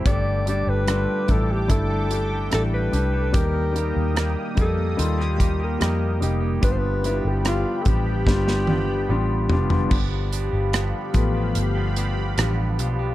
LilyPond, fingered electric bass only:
\new Staff \with { instrumentName = "Fingered electric bass" } { \clef bass \time 4/4 \key g \mixolydian \tempo 4 = 73 g,,8. g,,8 r16 a,,8 g,,4 a,,8 c,8 | ees,8. ees,8 r16 f,8 ees,4 f,8 f,,8 | g,,8. g,,8 r16 a,,8 g,,4 a,,8 f,,8 | g,,8. g,,8 r16 a,,8 g,,4 a,,8 b,,8 | }